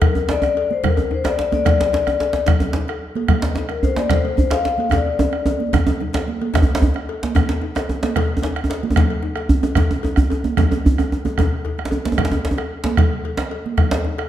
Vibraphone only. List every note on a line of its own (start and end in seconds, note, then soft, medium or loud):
0.03 0.28 A#4 medium
0.30 0.72 D5 loud
0.73 0.85 C5 medium
0.87 1.11 A#4 medium
1.14 1.27 C5 medium
1.26 1.53 D5 medium
1.54 1.67 D5 medium
1.68 2.45 D5 medium
3.69 3.84 A#4 medium
3.83 3.96 C5 medium
3.97 4.11 D5 medium
4.10 4.37 C5 medium
4.38 4.52 C5 medium
4.51 4.93 F5 medium
4.94 5.71 D5 medium